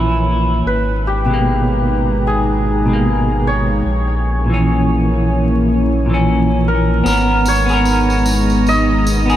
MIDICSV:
0, 0, Header, 1, 6, 480
1, 0, Start_track
1, 0, Key_signature, 5, "minor"
1, 0, Tempo, 800000
1, 394, Time_signature, 4, 2, 24, 8
1, 5619, End_track
2, 0, Start_track
2, 0, Title_t, "Santur"
2, 0, Program_c, 0, 15
2, 402, Note_on_c, 0, 71, 79
2, 642, Note_on_c, 0, 67, 72
2, 1362, Note_on_c, 0, 68, 84
2, 1398, Note_off_c, 0, 67, 0
2, 2042, Note_off_c, 0, 71, 0
2, 2083, Note_on_c, 0, 73, 91
2, 3181, Note_off_c, 0, 68, 0
2, 3735, Note_off_c, 0, 73, 0
2, 4007, Note_on_c, 0, 70, 81
2, 4490, Note_on_c, 0, 73, 100
2, 5211, Note_on_c, 0, 75, 112
2, 5619, Note_off_c, 0, 70, 0
2, 5619, Note_off_c, 0, 73, 0
2, 5619, Note_off_c, 0, 75, 0
2, 5619, End_track
3, 0, Start_track
3, 0, Title_t, "Analog synth pad"
3, 0, Program_c, 1, 89
3, 0, Note_on_c, 1, 58, 69
3, 0, Note_on_c, 1, 61, 63
3, 0, Note_on_c, 1, 64, 65
3, 0, Note_on_c, 1, 73, 77
3, 373, Note_off_c, 1, 61, 0
3, 374, Note_off_c, 1, 58, 0
3, 374, Note_off_c, 1, 64, 0
3, 374, Note_off_c, 1, 73, 0
3, 388, Note_on_c, 1, 56, 76
3, 388, Note_on_c, 1, 82, 81
3, 389, Note_on_c, 1, 63, 66
3, 2292, Note_off_c, 1, 56, 0
3, 2292, Note_off_c, 1, 63, 0
3, 2292, Note_off_c, 1, 82, 0
3, 2313, Note_on_c, 1, 61, 70
3, 2314, Note_on_c, 1, 58, 76
3, 2314, Note_on_c, 1, 64, 64
3, 2315, Note_on_c, 1, 73, 86
3, 4215, Note_off_c, 1, 58, 0
3, 4215, Note_off_c, 1, 61, 0
3, 4215, Note_off_c, 1, 64, 0
3, 4215, Note_off_c, 1, 73, 0
3, 4230, Note_on_c, 1, 59, 71
3, 4233, Note_on_c, 1, 56, 79
3, 4233, Note_on_c, 1, 63, 69
3, 4233, Note_on_c, 1, 82, 86
3, 5619, Note_off_c, 1, 56, 0
3, 5619, Note_off_c, 1, 59, 0
3, 5619, Note_off_c, 1, 63, 0
3, 5619, Note_off_c, 1, 82, 0
3, 5619, End_track
4, 0, Start_track
4, 0, Title_t, "Clean electric guitar"
4, 0, Program_c, 2, 27
4, 0, Note_on_c, 2, 46, 67
4, 0, Note_on_c, 2, 52, 61
4, 0, Note_on_c, 2, 64, 80
4, 376, Note_off_c, 2, 46, 0
4, 382, Note_off_c, 2, 52, 0
4, 389, Note_off_c, 2, 64, 0
4, 754, Note_on_c, 2, 47, 76
4, 778, Note_on_c, 2, 56, 67
4, 801, Note_on_c, 2, 58, 82
4, 1691, Note_off_c, 2, 47, 0
4, 1703, Note_off_c, 2, 56, 0
4, 1713, Note_on_c, 2, 47, 70
4, 1715, Note_off_c, 2, 58, 0
4, 1735, Note_on_c, 2, 56, 66
4, 1759, Note_on_c, 2, 58, 73
4, 2291, Note_off_c, 2, 47, 0
4, 2302, Note_off_c, 2, 56, 0
4, 2314, Note_off_c, 2, 58, 0
4, 2675, Note_on_c, 2, 46, 67
4, 2698, Note_on_c, 2, 52, 68
4, 2722, Note_on_c, 2, 61, 76
4, 3480, Note_off_c, 2, 46, 0
4, 3491, Note_off_c, 2, 52, 0
4, 3503, Note_off_c, 2, 61, 0
4, 3636, Note_on_c, 2, 46, 80
4, 3659, Note_on_c, 2, 52, 78
4, 3683, Note_on_c, 2, 61, 91
4, 4212, Note_off_c, 2, 46, 0
4, 4220, Note_off_c, 2, 61, 0
4, 4222, Note_on_c, 2, 59, 95
4, 4223, Note_off_c, 2, 52, 0
4, 4235, Note_on_c, 2, 68, 85
4, 4244, Note_off_c, 2, 68, 0
4, 4246, Note_on_c, 2, 70, 101
4, 4554, Note_off_c, 2, 59, 0
4, 4566, Note_off_c, 2, 70, 0
4, 4595, Note_on_c, 2, 59, 81
4, 4619, Note_on_c, 2, 68, 76
4, 4641, Note_off_c, 2, 68, 0
4, 4643, Note_on_c, 2, 70, 90
4, 5532, Note_off_c, 2, 59, 0
4, 5554, Note_on_c, 2, 59, 79
4, 5556, Note_off_c, 2, 70, 0
4, 5578, Note_on_c, 2, 68, 76
4, 5619, Note_off_c, 2, 59, 0
4, 5619, Note_off_c, 2, 68, 0
4, 5619, End_track
5, 0, Start_track
5, 0, Title_t, "Sub bass"
5, 0, Program_c, 3, 38
5, 0, Note_on_c, 3, 34, 78
5, 375, Note_off_c, 3, 34, 0
5, 393, Note_on_c, 3, 32, 78
5, 2294, Note_off_c, 3, 32, 0
5, 2313, Note_on_c, 3, 34, 76
5, 4214, Note_off_c, 3, 34, 0
5, 4232, Note_on_c, 3, 32, 89
5, 5619, Note_off_c, 3, 32, 0
5, 5619, End_track
6, 0, Start_track
6, 0, Title_t, "Drums"
6, 4236, Note_on_c, 9, 54, 54
6, 4296, Note_off_c, 9, 54, 0
6, 4474, Note_on_c, 9, 54, 95
6, 4534, Note_off_c, 9, 54, 0
6, 4613, Note_on_c, 9, 54, 34
6, 4673, Note_off_c, 9, 54, 0
6, 4713, Note_on_c, 9, 54, 52
6, 4773, Note_off_c, 9, 54, 0
6, 4859, Note_on_c, 9, 54, 37
6, 4919, Note_off_c, 9, 54, 0
6, 4954, Note_on_c, 9, 54, 94
6, 5014, Note_off_c, 9, 54, 0
6, 5098, Note_on_c, 9, 54, 36
6, 5158, Note_off_c, 9, 54, 0
6, 5199, Note_on_c, 9, 54, 43
6, 5259, Note_off_c, 9, 54, 0
6, 5440, Note_on_c, 9, 54, 102
6, 5500, Note_off_c, 9, 54, 0
6, 5577, Note_on_c, 9, 54, 37
6, 5619, Note_off_c, 9, 54, 0
6, 5619, End_track
0, 0, End_of_file